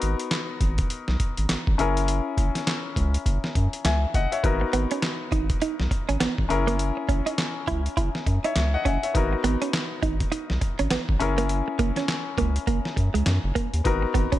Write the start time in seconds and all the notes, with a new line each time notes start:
Already playing: B3 D#4 F#4 A#4
0.02 G#1, closed hi-hat
0.20 closed hi-hat
0.31 snare, clap, closed hi-hat
0.61 G#1, kick, closed hi-hat
0.78 kick, closed hi-hat
0.90 closed hi-hat
1.08 B1, snare
1.20 kick, closed hi-hat
1.37 G#1, closed hi-hat
1.49 G#1, snare, clap, closed hi-hat
1.67 G#1, kick
1.78 F#1 C#4 E4 G#4 A#4, closed hi-hat
1.97 closed hi-hat
2.08 closed hi-hat
2.38 F#1, kick, closed hi-hat
2.55 snare, closed hi-hat
2.67 snare, clap, closed hi-hat
2.96 C#2, kick, closed hi-hat
3.14 closed hi-hat
3.26 F#1, kick, closed hi-hat
3.44 snare
3.55 F#2, kick, closed hi-hat
3.73 closed hi-hat
3.85 C#2 E5 G#5, snare, clap, closed hi-hat
4.14 F#1 D#5 F#5, kick, closed hi-hat
4.32 C#5 E5, closed hi-hat
4.43 G#1 B3 D#4 F#4 A#4, kick, closed hi-hat
4.61 muted clean electric guitar stroke
4.73 G#1 B3, closed hi-hat
4.91 C#4, closed hi-hat
5.03 snare, clap, closed hi-hat
5.32 G#1 D#4, kick, closed hi-hat
5.50 kick, closed hi-hat
5.62 D#4, closed hi-hat
5.80 B1, snare
5.91 muted clean electric guitar stroke, kick, closed hi-hat
6.09 G#1 C#4, closed hi-hat
6.20 G#1 B3, snare, clap, closed hi-hat
6.38 G#1, kick
6.49 F#1 C#4 E4 G#4 A#4, muted clean electric guitar stroke, closed hi-hat
6.67 A#3, closed hi-hat
6.79 closed hi-hat
6.97 muted clean electric guitar stroke
7.09 F#1 C#4, kick, closed hi-hat
7.26 D#4, closed hi-hat
7.38 snare, clap, closed hi-hat
7.67 C#2 E4, kick, closed hi-hat
7.86 closed hi-hat
7.97 F#1 E4, kick, closed hi-hat
8.15 snare
8.26 F#2, muted clean electric guitar stroke, kick, closed hi-hat
8.44 D#4 C#5 E5, closed hi-hat
8.56 C#2, snare, clap, closed hi-hat
8.74 D#5 F#5
8.85 F#1 C#4 E5 G#5, kick, closed hi-hat
9.03 C#5 E5, closed hi-hat
9.14 G#1 B3 D#4 F#4 A#4, kick, closed hi-hat
9.33 muted clean electric guitar stroke
9.44 G#1 B3, closed hi-hat
9.62 C#4, closed hi-hat
9.73 snare, clap, closed hi-hat
10.03 G#1 D#4, kick, closed hi-hat
10.20 kick, closed hi-hat
10.32 D#4, closed hi-hat
10.50 B1, snare
10.61 muted clean electric guitar stroke, kick, closed hi-hat
10.79 G#1 C#4, closed hi-hat
10.91 G#1 B3, snare, clap, closed hi-hat
11.09 G#1, kick
11.20 F#1 C#4 E4 G#4 A#4, muted clean electric guitar stroke, closed hi-hat
11.38 A#3, closed hi-hat
11.49 closed hi-hat
11.68 muted clean electric guitar stroke
11.79 F#1 A#3, kick, closed hi-hat
11.96 C#4, snare, closed hi-hat
12.08 snare, clap, closed hi-hat
12.38 C#2 A#3, kick, closed hi-hat
12.56 closed hi-hat
12.67 F#1 A#3, kick, closed hi-hat
12.85 snare
12.96 F#2, muted clean electric guitar stroke, kick, closed hi-hat
13.14 C#2 G#3, closed hi-hat
13.26 F#2, snare, clap, closed hi-hat
13.44 F#1
13.55 A#3, kick, closed hi-hat
13.74 D#2, closed hi-hat
13.84 G#1 B3 D#4 F#4 A#4, kick, closed hi-hat
14.02 muted clean electric guitar stroke
14.14 G#1 B3, kick, closed hi-hat
14.32 C#4, kick, closed hi-hat